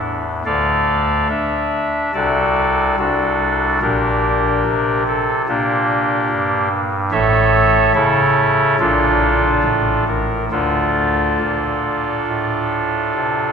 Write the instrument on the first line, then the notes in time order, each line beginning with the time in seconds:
pipe organ
Already playing: E2
0.45 D2 D3 A4 D5 F5
1.29 D4 E5
2.14 C2 C3 F#4 A4 D5
2.98 C2 D4 F#4 A4
3.81 A#1 A#2 D4 G4 A#4
4.67 C3
5.07 A4
5.48 A#2 A#3 D4 G4
6.31 G2
7.11 A1 A2 A4 C#5 E5
7.94 C#3 E4 A4 C#5
8.79 A#1 A#2 D4 F4 A4
9.64 A1 A2
10.08 A#4
10.51 D2 D3 D4 F4 A4
11.40 A#2
12.27 A2
13.15 C3